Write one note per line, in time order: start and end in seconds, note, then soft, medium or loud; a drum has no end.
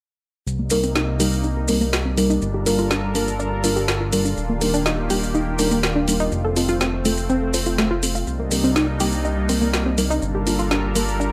0.47 2.39 C2 medium
0.47 2.40 C3 medium
0.47 4.33 G3 medium
0.47 2.40 A#3 medium
0.47 6.28 D4 medium
0.47 2.40 D#4 medium
0.47 maracas soft
0.59 0.67 A#3 medium
0.70 0.84 G3 medium
0.70 0.84 A#3 medium
0.70 0.84 C4 medium
0.70 0.84 D#4 medium
0.70 0.84 A#4 loud
0.70 open hi-hat loud
0.70 maracas medium
0.83 0.95 C4 medium
0.83 maracas soft
0.95 1.07 D#4 loud
0.95 snare loud
0.95 maracas soft
1.20 1.33 G3 medium
1.20 1.33 A#3 medium
1.20 1.33 C4 medium
1.20 1.33 D#4 medium
1.20 1.28 G4 medium
1.20 1.33 A#4 medium
1.20 open hi-hat loud
1.20 maracas medium
1.32 maracas soft
1.44 1.49 D#4 medium
1.44 maracas soft
1.68 1.82 G3 medium
1.68 1.82 A#3 medium
1.68 1.82 C4 medium
1.68 1.80 C4 medium
1.68 1.82 D#4 medium
1.68 1.82 A#4 medium
1.68 open hi-hat loud
1.68 maracas medium
1.81 1.92 A#3 loud
1.81 maracas soft
1.93 snare loud
1.93 maracas soft
2.06 2.17 C4 medium
2.17 2.39 G3 medium
2.17 2.39 A#3 medium
2.17 2.39 C4 medium
2.17 2.39 D#4 medium
2.17 2.39 A#4 medium
2.17 open hi-hat medium
2.17 maracas medium
2.30 2.35 D#4 loud
2.30 maracas soft
2.42 4.35 G1 medium
2.42 8.23 F4 medium
2.42 4.35 A4 medium
2.42 4.35 A#4 medium
2.42 maracas soft
2.54 2.59 G4 medium
2.66 2.80 G3 medium
2.66 2.80 A#3 medium
2.66 2.80 D4 medium
2.66 2.80 F4 medium
2.66 2.80 A#4 loud
2.66 open hi-hat loud
2.66 maracas medium
2.78 2.90 F4 loud
2.78 maracas soft
2.91 2.99 D4 medium
2.91 snare loud
2.91 maracas soft
3.15 3.28 G3 medium
3.15 3.28 A#3 medium
3.15 3.23 A#3 medium
3.15 3.28 D4 medium
3.15 3.28 F4 medium
3.15 3.28 A#4 medium
3.15 open hi-hat loud
3.15 maracas medium
3.28 maracas medium
3.39 3.44 D4 loud
3.39 maracas soft
3.64 3.77 G3 medium
3.64 3.77 A#3 medium
3.64 3.77 D4 medium
3.64 3.77 F4 medium
3.64 3.76 F4 medium
3.64 3.77 A#4 medium
3.64 open hi-hat loud
3.64 maracas medium
3.76 3.88 G4 medium
3.76 maracas soft
3.88 snare loud
3.88 maracas soft
4.01 4.09 F4 medium
4.13 4.34 G3 medium
4.13 4.34 A#3 medium
4.13 4.34 D4 medium
4.13 4.34 F4 medium
4.13 4.34 A#4 medium
4.13 open hi-hat medium
4.13 maracas medium
4.25 4.36 D4 medium
4.25 maracas soft
4.37 6.30 D#1 medium
4.37 6.30 D#3 medium
4.37 6.30 A#3 medium
4.37 6.30 G4 medium
4.37 maracas soft
4.49 4.57 A#3 medium
4.61 4.75 G3 medium
4.61 4.75 A#3 medium
4.61 4.75 D4 medium
4.61 4.75 D#4 medium
4.61 4.75 A#4 loud
4.61 open hi-hat loud
4.61 maracas medium
4.74 4.85 D4 loud
4.74 maracas medium
4.86 4.98 D#4 loud
4.86 snare loud
4.86 maracas soft
5.10 5.24 G3 medium
5.10 5.24 A#3 medium
5.10 5.24 D4 medium
5.10 5.24 D#4 medium
5.10 5.18 G4 medium
5.10 5.24 A#4 medium
5.10 open hi-hat loud
5.10 maracas medium
5.23 maracas medium
5.35 5.40 D#4 medium
5.35 maracas soft
5.59 5.72 G3 medium
5.59 5.72 A#3 medium
5.59 5.72 D4 medium
5.59 5.71 D4 medium
5.59 5.72 D#4 medium
5.59 5.72 A#4 loud
5.59 open hi-hat loud
5.59 maracas medium
5.71 5.83 A#3 loud
5.71 maracas medium
5.83 snare loud
5.83 maracas soft
5.96 6.07 D4 medium
6.08 6.29 G3 medium
6.08 6.29 A#3 medium
6.08 6.29 D4 medium
6.08 6.29 D#4 medium
6.08 6.29 A#4 medium
6.08 open hi-hat loud
6.08 maracas medium
6.20 6.25 D#4 loud
6.20 maracas soft
6.32 8.25 F1 medium
6.32 8.25 A3 medium
6.32 8.25 C4 medium
6.32 maracas soft
6.45 6.49 A4 medium
6.56 6.70 C4 medium
6.56 6.70 F4 medium
6.56 6.70 A4 loud
6.56 open hi-hat loud
6.56 maracas medium
6.68 6.80 F4 loud
6.68 maracas soft
6.81 6.89 C4 medium
6.81 snare loud
6.81 maracas soft
7.05 7.14 A3 medium
7.05 7.19 C4 medium
7.05 7.19 F4 medium
7.05 7.19 A4 medium
7.05 open hi-hat loud
7.05 maracas medium
7.17 maracas soft
7.29 7.35 C4 loud
7.29 maracas soft
7.53 7.67 C4 medium
7.53 7.67 F4 medium
7.53 7.67 A4 medium
7.53 7.66 C5 medium
7.53 open hi-hat loud
7.53 maracas medium
7.66 7.78 F4 medium
7.66 maracas medium
7.78 7.83 A3 loud
7.78 snare loud
7.78 maracas soft
7.91 7.99 F4 loud
8.03 8.24 C4 medium
8.03 8.24 F4 medium
8.03 8.24 A4 medium
8.03 open hi-hat loud
8.03 maracas medium
8.15 8.23 F4 medium
8.15 maracas soft
8.27 10.20 C2 medium
8.27 10.20 C3 medium
8.27 10.20 G3 medium
8.27 10.20 A#3 medium
8.27 10.20 D4 medium
8.27 10.20 D#4 medium
8.27 maracas soft
8.40 8.48 A#3 medium
8.51 8.65 G3 medium
8.51 8.65 A#3 medium
8.51 8.65 C4 medium
8.51 8.65 D#4 medium
8.51 8.65 A#4 loud
8.51 open hi-hat loud
8.51 maracas medium
8.64 8.75 C4 loud
8.64 maracas soft
8.76 8.88 D#4 loud
8.76 snare loud
8.76 maracas soft
9.00 9.14 G3 medium
9.00 9.14 A#3 medium
9.00 9.14 C4 medium
9.00 9.14 D#4 medium
9.00 9.09 G4 medium
9.00 9.14 A#4 medium
9.00 open hi-hat loud
9.00 maracas medium
9.12 maracas medium
9.25 9.30 D#4 medium
9.25 maracas soft
9.49 9.63 G3 medium
9.49 9.63 A#3 medium
9.49 9.61 C4 medium
9.49 9.63 C4 medium
9.49 9.63 D#4 medium
9.49 9.63 A#4 medium
9.49 open hi-hat loud
9.49 maracas medium
9.62 9.73 A#3 medium
9.62 maracas soft
9.73 snare loud
9.73 maracas soft
9.86 9.97 C4 medium
9.98 10.19 G3 medium
9.98 10.19 A#3 medium
9.98 10.19 C4 medium
9.98 10.19 D#4 medium
9.98 10.19 A#4 medium
9.98 open hi-hat medium
9.98 maracas medium
10.10 10.15 D#4 loud
10.10 maracas soft
10.22 11.32 G1 medium
10.22 11.32 G3 medium
10.22 11.32 D4 medium
10.22 11.32 F4 medium
10.22 11.32 A4 medium
10.22 11.32 A#4 medium
10.22 maracas soft
10.35 10.40 G4 medium
10.47 10.60 G3 medium
10.47 10.60 A#3 medium
10.47 10.60 D4 medium
10.47 10.60 F4 medium
10.47 10.60 A#4 loud
10.47 open hi-hat medium
10.47 maracas medium
10.59 10.71 F4 medium
10.59 maracas soft
10.71 10.79 D4 medium
10.71 snare loud
10.71 maracas soft
10.95 11.09 G3 medium
10.95 11.09 A#3 medium
10.95 11.04 A#3 medium
10.95 11.09 D4 medium
10.95 11.09 F4 medium
10.95 11.09 A#4 medium
10.95 open hi-hat loud
10.95 maracas medium
11.08 maracas soft
11.20 11.25 D4 medium
11.20 maracas soft